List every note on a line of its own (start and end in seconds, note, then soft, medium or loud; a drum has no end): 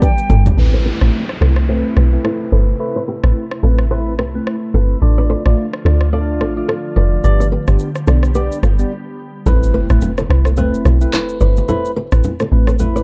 0.00 0.53 D3 medium
0.00 0.55 G3 medium
0.00 0.55 B3 medium
0.00 0.10 D4 medium
0.00 0.10 G4 medium
0.00 0.55 G4 medium
0.00 0.12 G4 medium
0.00 0.12 B4 medium
0.00 0.10 D5 medium
0.00 0.44 G5 medium
0.00 kick loud
0.00 high tom medium
0.00 high bongo medium
0.00 shaker medium
0.18 shaker medium
0.30 0.51 G1 medium
0.30 0.40 F4 medium
0.30 0.39 A4 medium
0.30 mid tom loud
0.30 high bongo medium
0.30 shaker medium
0.46 floor tom loud
0.46 high bongo medium
0.46 low bongo medium
0.46 shaker medium
0.57 0.91 A1 loud
0.57 4.98 C3 medium
0.57 7.20 A3 medium
0.57 0.97 A3 medium
0.57 0.98 C4 medium
0.57 4.98 E4 medium
0.57 0.98 E4 medium
0.57 4.98 B4 medium
0.57 0.98 B4 loud
0.57 downlifter medium
0.74 0.81 A4 medium
0.74 0.81 C5 medium
0.85 0.96 G4 medium
0.85 0.95 B4 medium
1.01 1.10 A1 loud
1.01 1.21 A3 medium
1.01 1.21 C4 medium
1.01 1.21 E4 medium
1.01 1.21 B4 medium
1.01 cross-stick medium
1.29 cross-stick medium
1.41 1.83 C2 medium
1.41 1.63 A3 medium
1.41 1.63 C4 medium
1.41 1.63 E4 medium
1.41 1.51 F4 medium
1.41 1.51 A4 medium
1.41 1.63 B4 medium
1.41 cross-stick medium
1.56 cross-stick medium
1.69 2.09 A3 medium
1.69 2.09 C4 medium
1.69 2.09 E4 medium
1.69 1.79 A4 medium
1.69 2.09 B4 loud
1.69 1.79 C5 medium
1.97 2.18 B1 medium
1.97 2.07 G4 medium
1.97 2.06 B4 medium
1.97 cross-stick medium
2.12 2.49 A3 medium
2.12 2.49 C4 medium
2.12 2.49 E4 medium
2.12 2.49 B4 medium
2.24 2.35 E4 medium
2.24 2.34 A4 medium
2.24 cross-stick medium
2.52 2.73 G1 medium
2.52 2.78 A3 medium
2.52 2.78 C4 medium
2.52 2.78 E4 medium
2.52 2.62 A4 medium
2.52 2.78 B4 medium
2.52 2.62 C5 medium
2.80 3.02 A3 medium
2.80 3.02 C4 medium
2.80 3.02 E4 medium
2.80 3.02 B4 loud
2.96 3.04 A4 medium
2.96 3.03 C5 medium
3.08 3.18 G4 medium
3.08 3.17 B4 medium
3.24 3.33 A1 loud
3.24 3.43 A3 medium
3.24 3.43 C4 medium
3.24 3.44 E4 medium
3.24 3.44 B4 medium
3.24 cross-stick medium
3.51 cross-stick medium
3.63 4.20 A1 medium
3.63 3.85 A3 medium
3.63 3.85 C4 medium
3.63 3.85 E4 medium
3.63 3.73 F4 medium
3.63 3.73 A4 medium
3.63 3.85 B4 medium
3.79 cross-stick medium
3.91 4.13 A3 medium
3.91 4.13 C4 medium
3.91 4.13 E4 medium
3.91 4.01 A4 medium
3.91 4.13 B4 loud
3.91 4.01 C5 medium
4.19 4.40 C2 medium
4.19 4.29 G4 medium
4.19 4.28 B4 medium
4.19 cross-stick medium
4.34 4.54 A3 medium
4.34 4.54 C4 medium
4.34 4.54 E4 medium
4.34 4.55 B4 medium
4.47 cross-stick medium
4.74 4.95 G1 medium
4.74 4.96 A3 medium
4.74 4.96 C4 medium
4.74 4.96 E4 medium
4.74 4.85 F4 medium
4.74 4.84 A4 medium
4.74 4.96 B4 medium
5.02 5.35 A1 loud
5.02 7.22 D3 medium
5.02 7.22 F3 medium
5.02 5.42 A3 medium
5.02 5.42 D4 medium
5.02 5.42 F4 medium
5.02 7.22 F4 medium
5.02 5.42 D5 loud
5.18 5.26 B4 medium
5.18 5.25 D5 medium
5.30 5.40 A4 medium
5.30 5.39 C5 medium
5.45 5.55 A1 medium
5.45 5.65 A3 medium
5.45 5.65 D4 medium
5.45 5.66 F4 medium
5.45 5.66 D5 medium
5.45 cross-stick medium
5.73 cross-stick medium
5.85 6.42 D2 medium
5.85 6.07 A3 medium
5.85 6.07 D4 medium
5.85 6.07 F4 medium
5.85 5.96 F4 medium
5.85 5.95 A4 medium
5.85 6.07 D5 medium
5.85 cross-stick loud
6.01 cross-stick medium
6.13 6.53 A3 medium
6.13 6.53 D4 medium
6.13 6.53 F4 medium
6.13 6.23 A4 medium
6.13 6.23 D5 medium
6.13 6.53 D5 loud
6.41 6.62 A1 medium
6.41 6.51 A4 medium
6.41 6.50 C5 medium
6.41 cross-stick medium
6.57 6.93 A3 medium
6.57 6.93 D4 medium
6.57 6.94 F4 medium
6.57 6.94 D5 medium
6.68 6.79 F4 medium
6.68 6.78 A4 medium
6.68 cross-stick medium
6.96 7.17 F1 medium
6.96 7.22 A3 medium
6.96 7.22 D4 medium
6.96 7.22 F4 medium
6.96 7.07 B4 medium
6.96 7.06 D5 medium
6.96 7.22 D5 medium
7.24 7.57 G1 medium
7.24 9.44 D3 medium
7.24 9.44 G3 medium
7.24 7.46 B3 medium
7.24 9.44 B3 medium
7.24 7.46 D4 medium
7.24 7.46 G4 medium
7.24 9.44 G4 medium
7.24 7.46 D5 loud
7.24 shaker medium
7.40 7.48 B4 medium
7.40 7.47 D5 medium
7.40 shaker medium
7.52 7.62 G4 medium
7.52 7.62 B4 medium
7.67 7.77 G1 loud
7.67 7.88 B3 medium
7.67 7.88 D4 medium
7.67 7.88 G4 medium
7.67 7.88 D5 medium
7.67 cross-stick medium
7.67 shaker soft
7.79 shaker medium
7.95 cross-stick medium
7.95 shaker medium
8.07 8.49 B1 medium
8.07 8.29 B3 medium
8.07 8.29 D4 medium
8.07 8.18 F4 medium
8.07 8.29 G4 medium
8.07 8.17 A4 medium
8.07 8.30 D5 medium
8.07 cross-stick loud
8.07 shaker soft
8.23 cross-stick medium
8.23 shaker soft
8.35 8.57 B3 medium
8.35 8.57 D4 medium
8.35 8.57 G4 medium
8.35 8.45 G4 medium
8.35 8.45 B4 medium
8.35 8.57 D5 loud
8.35 shaker medium
8.52 shaker medium
8.63 8.84 G1 medium
8.63 8.73 F4 medium
8.63 8.73 A4 medium
8.63 cross-stick medium
8.63 shaker medium
8.79 8.91 B3 medium
8.79 8.91 D4 medium
8.79 8.91 G4 medium
8.79 8.91 D5 medium
8.79 shaker medium
9.46 9.79 A1 loud
9.46 9.86 A3 medium
9.46 9.86 C4 medium
9.46 9.87 E4 medium
9.46 9.57 E4 medium
9.46 9.56 A4 loud
9.46 9.87 B4 loud
9.46 impact medium
9.46 low conga medium
9.46 shaker medium
9.63 shaker medium
9.74 9.84 G4 medium
9.74 9.84 B4 medium
9.74 low bongo medium
9.90 9.99 A1 loud
9.90 10.10 A3 medium
9.90 10.10 C4 medium
9.90 10.10 E4 medium
9.90 10.10 B4 medium
9.90 cross-stick medium
9.90 shaker soft
10.01 high bongo medium
10.01 low conga medium
10.01 shaker medium
10.18 10.26 A4 medium
10.18 10.25 C5 medium
10.18 cross-stick medium
10.18 low bongo medium
10.18 shaker medium
10.29 10.72 C2 medium
10.29 10.52 A3 medium
10.29 10.52 C4 medium
10.29 10.52 E4 medium
10.29 10.52 B4 medium
10.29 cross-stick loud
10.45 10.53 A4 medium
10.45 10.53 C5 medium
10.45 cross-stick medium
10.45 shaker soft
10.57 10.97 A3 medium
10.57 10.97 C4 medium
10.57 10.98 E4 medium
10.57 10.98 B4 loud
10.57 10.68 C5 medium
10.57 10.67 E5 medium
10.57 low conga medium
10.57 shaker medium
10.74 shaker medium
10.85 11.06 B1 medium
10.85 10.96 A4 medium
10.85 10.95 C5 medium
10.85 cross-stick medium
10.85 low bongo medium
10.85 shaker medium
11.01 11.38 A3 medium
11.01 11.38 C4 medium
11.01 11.38 E4 medium
11.01 11.38 B4 medium
11.01 shaker medium
11.13 11.23 E4 medium
11.13 11.23 B4 medium
11.13 cross-stick medium
11.13 clap medium
11.13 high bongo medium
11.13 shaker medium
11.29 shaker medium
11.40 11.62 G1 medium
11.40 11.67 A3 medium
11.40 11.67 C4 medium
11.40 11.67 E4 medium
11.40 11.67 B4 medium
11.40 11.51 B4 medium
11.40 11.51 D5 medium
11.40 high bongo medium
11.40 shaker medium
11.57 low bongo medium
11.57 shaker medium
11.68 11.90 A3 medium
11.68 11.90 C4 medium
11.68 11.91 E4 medium
11.68 11.79 E4 medium
11.68 11.78 A4 medium
11.68 11.91 B4 loud
11.68 low conga medium
11.68 shaker medium
11.85 shaker medium
11.96 12.07 G4 medium
11.96 12.06 B4 medium
11.96 low bongo medium
12.12 12.21 A1 loud
12.12 12.32 A3 medium
12.12 12.32 C4 medium
12.12 12.32 E4 medium
12.12 12.32 B4 medium
12.12 cross-stick loud
12.12 shaker soft
12.24 high bongo medium
12.24 low conga medium
12.24 shaker medium
12.40 12.48 A4 medium
12.40 12.47 C5 medium
12.40 cross-stick medium
12.40 low bongo medium
12.40 shaker medium
12.52 13.03 A1 medium
12.52 12.74 A3 medium
12.52 12.74 C4 medium
12.52 12.74 E4 medium
12.52 12.74 B4 medium
12.67 12.76 A4 medium
12.67 12.75 C5 medium
12.67 cross-stick medium
12.67 shaker soft
12.79 13.02 A3 medium
12.79 13.02 C4 medium
12.79 13.02 E4 medium
12.79 13.02 B4 loud
12.79 low conga medium
12.79 shaker medium
12.96 13.03 B4 medium
12.96 13.03 D5 medium
12.96 shaker medium